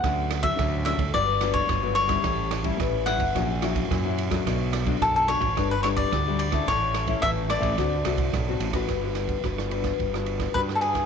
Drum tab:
RD |x-xxx-xxx-xxx-xx|x-xxx-xxx-xxx-xx|x-xxx-xxx-xxx-xx|x-xxx-xxx-xxx-xx|
SD |r-r-r-r-r-r-r--r|r-r-r-r-r-r-r--r|r-r-r-r-r-r-r--r|r-r-r-r-r-r-r--r|
BD |o--oo--oo--oo--o|o--oo--oo--oo--o|o--oo--oo--oo--o|o--oo--oo--oo--o|

RD |x-xxx-xxx-xxx-xx|
SD |r-r-rr-r-r-r-r-r|
BD |o--oo--oo--oo--o|